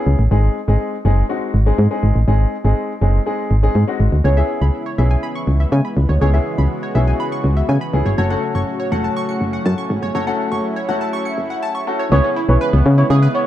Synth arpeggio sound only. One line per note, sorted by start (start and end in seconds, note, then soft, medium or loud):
4.25 4.33 C#5 medium
4.37 4.46 E5 medium
4.62 4.70 B5 medium
4.86 4.95 C#5 medium
4.98 5.07 E5 medium
5.11 5.19 G#5 medium
5.23 5.32 B5 medium
5.35 5.44 C#6 medium
5.60 5.69 E5 medium
5.72 5.81 G#5 medium
5.85 5.93 B5 medium
6.09 6.18 C#5 medium
6.21 6.30 C#5 loud
6.34 6.42 E5 medium
6.58 6.67 B5 medium
6.83 6.92 C#5 medium
6.95 7.04 E5 medium
7.08 7.16 G#5 medium
7.20 7.28 B5 loud
7.32 7.41 C#6 medium
7.57 7.65 E5 medium
7.69 7.78 G#5 medium
7.81 7.90 B5 medium
8.06 8.14 C#5 medium
8.18 8.27 C#5 loud
8.30 8.39 F#5 medium
8.55 8.64 C#6 medium
8.80 8.88 C#5 medium
8.92 9.01 F#5 medium
9.04 9.13 A5 medium
9.16 9.25 C#6 loud
9.29 9.37 C#7 medium
9.53 9.62 F#5 medium
9.66 9.74 A5 medium
9.78 9.87 C#6 medium
10.03 10.11 C#5 medium
10.15 10.23 C#5 medium
10.27 10.36 F#5 medium
10.52 10.60 C#6 medium
10.76 10.85 C#5 medium
10.89 10.97 F#5 medium
11.01 11.10 A5 medium
11.13 11.22 C#6 loud
11.25 11.34 C#7 medium
11.50 11.59 F#5 medium
11.62 11.71 A5 medium
11.75 11.83 C#6 medium
11.99 12.08 C#5 medium
12.12 12.20 B3 loud
12.24 12.33 C#4 medium
12.36 12.45 E4 medium
12.61 12.70 B4 medium
12.73 12.82 B3 medium
12.98 13.06 E4 medium
13.10 13.19 G#4 loud
13.22 13.31 B4 medium
13.35 13.43 B3 medium